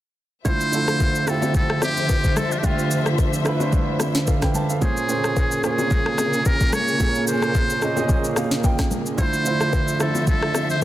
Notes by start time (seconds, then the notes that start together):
0.45 D3 F3 A3 E4 F4 C5 E5, kick, low conga, shaker
0.61 shaker
0.72 D3 A3 E4 F4 A4, shaker
0.88 cross-stick, shaker
1.00 kick, high bongo, shaker
1.15 shaker
1.27 D3 A3 E4 F4 G4 A4, cross-stick, shaker
1.42 low bongo, shaker
1.55 A4, kick, low conga, shaker
1.70 cross-stick
1.82 G4, cross-stick, low bongo, shaker
1.97 shaker
2.09 kick, high bongo, shaker
2.24 kick, shaker
2.36 A4, cross-stick, high bongo, low conga, shaker
2.52 F4, shaker
2.58 G4
2.63 D3 A3 F4 G4 E5, kick, low conga, shaker
2.79 shaker
2.91 shaker
3.06 cross-stick, shaker
3.18 kick, high bongo, shaker
3.33 shaker
3.45 D3 A3 E4 F4 B4, cross-stick, shaker
3.60 D3 A3 E4 F4 C5, low bongo, shaker
3.73 kick, low conga, shaker
4.00 cross-stick, low bongo, shaker
4.15 snare, shaker
4.27 A4 F5, kick, high bongo, shaker
4.42 B4 G5, kick, cross-stick, snare, shaker
4.54 C5 A5, high bongo, low conga, shaker
4.70 A4 F5, shaker
4.81 A#2 C#3 A#3 C#4 G#4 C5, kick, low conga, shaker
4.97 shaker
5.08 A#2 A#3 C#4 G#4 C5, shaker
5.24 cross-stick, shaker
5.37 kick, high bongo, shaker
5.52 shaker
5.63 A#2 A#3 C#4 G#4 C5, cross-stick, shaker
5.78 low bongo, shaker
5.91 kick, low conga, shaker
6.06 cross-stick
6.18 cross-stick, low bongo, shaker
6.33 shaker
6.46 A#4, kick, high bongo, shaker
6.61 kick, shaker
6.73 C#5, cross-stick, high bongo, low conga, shaker
6.88 shaker
6.99 A#2 A#3 C#4 G#4 A4, kick, low conga, shaker
7.09 A#4
7.15 shaker
7.28 C5, shaker
7.42 cross-stick, shaker
7.55 kick, high bongo, shaker
7.70 shaker
7.81 A#2 A#3 C#4 G#4 D#5, cross-stick, shaker
7.96 A#2 A#3 C#4 G#4 D#5, low bongo, shaker
8.09 kick, low conga, shaker
8.24 shaker
8.36 F5, cross-stick, low bongo, shaker
8.51 snare, shaker
8.64 G5, kick, high bongo, shaker
8.79 kick, cross-stick, snare, shaker
8.91 high bongo, low conga, shaker
9.06 shaker
9.17 D3 F3 A3 E4 F4 C5 E5, kick, low conga, shaker
9.33 shaker
9.45 D3 A3 E4 F4 C5, shaker
9.61 cross-stick, shaker
9.73 kick, high bongo, shaker
9.88 shaker
9.99 D3 A3 E4 F4 A4 C5, cross-stick, shaker
10.15 low bongo, shaker
10.27 A4, kick, low conga, shaker
10.43 cross-stick
10.54 cross-stick, low bongo, shaker
10.70 C5, shaker